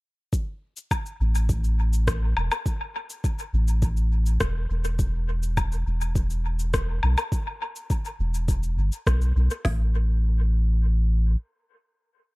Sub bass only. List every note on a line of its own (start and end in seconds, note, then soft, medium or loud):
1.20 2.34 A1 loud
2.36 2.50 E1 medium
3.53 4.38 A1 medium
4.41 4.66 E1 medium
4.70 5.84 E1 loud
5.86 7.00 E1 loud
7.03 7.16 B1 medium
8.19 8.77 E1 medium
8.77 8.90 G1 medium
9.06 9.32 B1 medium
9.35 9.49 B1 loud
9.65 11.36 A1 medium